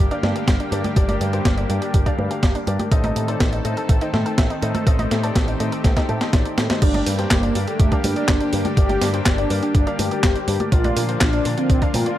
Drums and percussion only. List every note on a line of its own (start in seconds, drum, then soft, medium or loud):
0.11 closed hi-hat soft
0.23 snare medium
0.23 high conga medium
0.36 closed hi-hat soft
0.48 kick loud
0.48 snare loud
0.48 closed hi-hat medium
0.60 closed hi-hat soft
0.72 closed hi-hat medium
0.84 closed hi-hat soft
0.84 high conga medium
0.96 kick loud
0.96 closed hi-hat medium
1.09 closed hi-hat soft
1.09 high conga medium
1.21 closed hi-hat medium
1.33 closed hi-hat soft
1.45 kick loud
1.45 snare loud
1.45 closed hi-hat medium
1.58 closed hi-hat soft
1.70 closed hi-hat medium
1.82 closed hi-hat soft
1.94 kick loud
1.94 closed hi-hat medium
2.06 kick medium
2.06 closed hi-hat soft
2.19 high conga medium
2.31 closed hi-hat soft
2.43 kick loud
2.43 snare loud
2.43 closed hi-hat medium
2.55 closed hi-hat soft
2.67 closed hi-hat medium
2.79 closed hi-hat soft
2.79 high conga medium
2.92 kick loud
2.92 closed hi-hat medium
3.04 closed hi-hat soft
3.04 high conga medium
3.16 closed hi-hat medium
3.28 closed hi-hat soft
3.40 kick loud
3.40 snare loud
3.40 closed hi-hat medium
3.53 closed hi-hat soft
3.65 closed hi-hat medium
3.77 closed hi-hat soft
3.89 kick loud
3.89 closed hi-hat medium
4.01 closed hi-hat soft
4.14 snare medium
4.14 high conga medium
4.26 closed hi-hat soft
4.38 kick loud
4.38 snare loud
4.38 closed hi-hat medium
4.50 closed hi-hat soft
4.62 closed hi-hat medium
4.75 closed hi-hat soft
4.75 high conga medium
4.87 kick loud
4.87 closed hi-hat medium
4.99 closed hi-hat soft
4.99 high conga medium
5.11 snare medium
5.11 closed hi-hat medium
5.24 closed hi-hat soft
5.36 kick loud
5.36 snare loud
5.36 closed hi-hat loud
5.48 closed hi-hat soft
5.60 closed hi-hat medium
5.72 closed hi-hat soft
5.84 kick loud
5.84 snare medium
5.84 closed hi-hat medium
5.97 kick medium
5.97 snare medium
5.97 closed hi-hat soft
6.09 closed hi-hat soft
6.09 high conga medium
6.21 snare medium
6.21 closed hi-hat soft
6.33 kick loud
6.33 snare medium
6.33 closed hi-hat medium
6.45 closed hi-hat soft
6.58 snare loud
6.58 closed hi-hat medium
6.70 snare medium
6.70 closed hi-hat soft
6.70 high conga medium
6.82 kick loud
6.82 closed hi-hat medium
6.82 crash loud
6.94 closed hi-hat soft
6.94 high conga medium
7.06 open hi-hat loud
7.19 closed hi-hat soft
7.31 kick loud
7.31 snare loud
7.31 clap loud
7.31 closed hi-hat medium
7.43 closed hi-hat soft
7.55 open hi-hat medium
7.67 closed hi-hat soft
7.80 kick loud
7.80 closed hi-hat loud
7.92 kick medium
7.92 closed hi-hat soft
8.04 open hi-hat loud
8.04 high conga medium
8.16 closed hi-hat soft
8.28 kick loud
8.28 snare loud
8.28 clap loud
8.28 closed hi-hat medium
8.40 closed hi-hat soft
8.53 open hi-hat medium
8.65 closed hi-hat soft
8.65 high conga medium
8.77 kick loud
8.77 closed hi-hat medium
8.89 closed hi-hat soft
8.89 high conga medium
9.01 snare medium
9.01 open hi-hat loud
9.14 closed hi-hat soft
9.26 kick loud
9.26 snare loud
9.26 clap loud
9.26 closed hi-hat medium
9.38 closed hi-hat soft
9.50 open hi-hat medium
9.63 closed hi-hat soft
9.75 kick loud
9.75 closed hi-hat medium
9.87 closed hi-hat soft
9.99 open hi-hat loud
9.99 high conga medium
10.11 closed hi-hat soft
10.23 kick loud
10.23 snare loud
10.23 clap loud
10.23 closed hi-hat medium
10.36 closed hi-hat soft
10.48 open hi-hat medium
10.60 closed hi-hat soft
10.60 high conga medium
10.72 kick loud
10.72 closed hi-hat medium
10.84 closed hi-hat soft
10.84 high conga medium
10.97 open hi-hat loud
11.09 closed hi-hat soft
11.21 kick loud
11.21 snare loud
11.21 clap loud
11.21 closed hi-hat medium
11.33 closed hi-hat soft
11.45 open hi-hat medium
11.58 closed hi-hat soft
11.70 kick loud
11.70 closed hi-hat medium
11.82 kick medium
11.82 closed hi-hat soft
11.94 open hi-hat loud
11.94 high conga medium
12.06 closed hi-hat soft